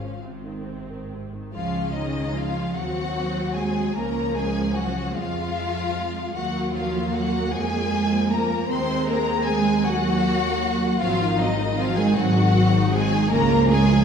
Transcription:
Already playing: viola section C#4, violin section F4 F5
0.00 viola section F3
0.21 double bass section G#1, cello section G#2, viola section C3 C4
0.44 viola section D#3
0.65 viola section C3
0.88 viola section D#3
1.12 viola section C3
1.33 viola section D#3
1.53 double bass section C#2, cello section F3, viola section G#3 C#4, violin section F4 F5
1.94 cello section D#3, violin section D#4 D#5
2.34 cello section F3, violin section F4 F5
2.75 double bass section D#2, viola section F#3 C4, cello section F#3, violin section F#4 F#5
3.54 cello section G#3, violin section G#4 G#5
3.95 double bass section C#2, viola section F3 C#4, cello section A#3, violin section A#4 A#5
4.36 cello section G#3, violin section G#4 G#5
4.75 cello section F#3, violin section F#4 F#5
5.14 double bass section F2, cello section F3, viola section G#3, violin section F4 F5
6.34 double bass section D#2, cello section F#3, viola section F#3 A#3, violin section F#4 F#5
6.73 cello section F3, violin section F4 F5
7.12 cello section F#3, violin section F#4 F#5
7.51 double bass section F2, viola section F3, cello section G#3, violin section G#4 G#5
8.31 cello section A#3, violin section A#4 A#5
8.69 double bass section D#2, viola section G#3 C4, cello section C4, violin section C5 C6
9.06 cello section A#3, violin section A#4 A#5
9.45 cello section G#3, violin section G#4 G#5
9.85 cello section F#3, viola section F#3 A#3, violin section F#4 F#5
10.99 double bass section G#1, cello section F3, viola section F#3 C4, violin section F4 F5
11.20 viola section D#3 D#4
11.38 cello section D#3, viola section F#3 C4, violin section D#4 D#5
11.58 viola section D#3 D#4
11.76 cello section F3, viola section F#3 C4, violin section F4 F5
11.96 viola section D#3 D#4, cello section G#3, violin section G#4 G#5
12.15 double bass section G#1, viola section F#3 C4, cello section F#3, violin section F#4 F#5
12.35 viola section D#3 D#4
12.53 viola section F#3 C4
12.74 viola section D#3 D#4
12.93 viola section F#3 C4, cello section G#3, violin section G#4 G#5
13.12 viola section D#3 D#4
13.31 double bass section C#2, viola section G#3 C#4, cello section A#3, violin section A#4 A#5
13.50 viola section F3 F4
13.69 viola section G#3 C#4, cello section G#3, violin section G#4 G#5
13.89 viola section F3 F4

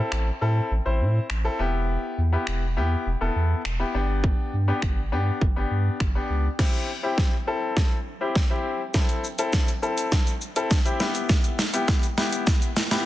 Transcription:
Already playing: grand piano C4 E4 A4
0.12 sub bass A1, finger snap
0.41 sub bass A2, grand piano C4 E4 A4
0.71 sub bass A1
0.85 sub bass A1, grand piano C4 E4 C5
1.01 sub bass A2
1.30 sub bass A1, finger snap
1.44 grand piano C4 E4 A4
1.59 sub bass E1, grand piano B3 E4 G4
2.18 sub bass E2
2.33 grand piano B3 E4 G4
2.47 sub bass E1, finger snap
2.77 sub bass E2, grand piano B3 E4 G4
3.06 sub bass E1
3.21 sub bass E1, grand piano B3 E4 A4
3.36 sub bass E2
3.65 sub bass E1, finger snap
3.79 grand piano B3 E4 G4
3.94 sub bass G1, grand piano B3 D4 G4
4.24 kick
4.53 sub bass G2
4.68 grand piano B3 D4 G4
4.82 sub bass G1, finger snap, kick
5.12 sub bass G2, grand piano B3 D4 G4
5.41 sub bass G1, kick
5.56 sub bass G1, grand piano B3 D4 G4
5.71 sub bass G2
6.00 sub bass G1, finger snap, kick
6.15 grand piano B3 D4 G4
6.30 sub bass C#2
6.59 grand piano C4 E4 G4, kick, snare, crash
7.03 grand piano C4 E4 G4
7.18 kick, snare
7.47 grand piano C4 E4 A4
7.77 kick, snare
8.21 grand piano C4 E4 G4
8.35 kick, snare
8.50 grand piano C4 E4 G4
8.94 grand piano C4 E4 A4, kick, snare, shaker
9.09 closed hi-hat, shaker
9.24 shaker
9.39 grand piano C4 E4 A4, closed hi-hat, shaker
9.53 kick, snare, shaker
9.68 closed hi-hat, shaker
9.82 grand piano C4 E4 A4, shaker
9.98 closed hi-hat, shaker
10.12 kick, snare, shaker
10.27 closed hi-hat, shaker
10.41 shaker
10.56 grand piano C4 E4 A4, closed hi-hat, shaker
10.71 kick, snare, shaker
10.85 grand piano C4 E4 G4, closed hi-hat, shaker
11.00 grand piano B3 E4 G4, snare, shaker
11.15 closed hi-hat, shaker
11.29 kick, snare, shaker
11.44 closed hi-hat, shaker
11.59 snare, open hi-hat, shaker
11.73 grand piano B3 E4 G4, closed hi-hat, shaker
11.88 kick, snare, shaker
12.03 closed hi-hat, shaker
12.18 grand piano B3 E4 G4, snare, open hi-hat, shaker
12.32 closed hi-hat, shaker
12.47 kick, snare, shaker
12.62 closed hi-hat, shaker
12.77 snare, open hi-hat, shaker
12.91 grand piano B3 E4 G4, snare, closed hi-hat, shaker

